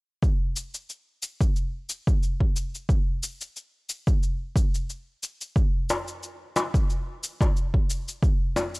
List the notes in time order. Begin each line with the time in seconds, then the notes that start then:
0.23 kick, cabasa
0.56 cabasa
0.74 cabasa
0.90 cabasa
1.23 cabasa
1.41 kick, cabasa
1.56 cabasa
1.89 cabasa
2.07 kick, cabasa
2.23 cabasa
2.40 kick
2.56 cabasa
2.75 cabasa
2.89 kick, cabasa
3.23 cabasa
3.41 cabasa
3.56 cabasa
3.89 cabasa
4.07 kick, cabasa
4.23 cabasa
4.56 kick, cabasa
4.75 cabasa
4.90 cabasa
5.23 cabasa
5.41 cabasa
5.56 kick, cabasa
5.90 darbuka ka, darbuka tek, cabasa
6.08 cabasa
6.23 cabasa
6.56 darbuka ka, darbuka tek, cabasa
6.74 kick, cabasa
6.90 cabasa
7.23 cabasa
7.41 kick, darbuka ka, cabasa
7.57 cabasa
7.74 kick
7.90 cabasa
8.08 cabasa
8.23 kick, cabasa
8.56 darbuka ka, darbuka tek, cabasa
8.75 cabasa